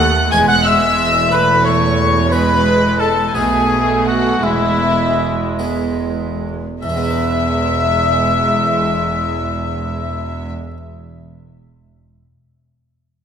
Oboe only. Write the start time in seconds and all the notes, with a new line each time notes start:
0.32 G#5
0.48 F#5
0.65 E5
1.32 B4
1.65 C#5
2.32 B4
3.00 A4
3.35 G#4
4.07 F#4
4.44 E4
6.82 E5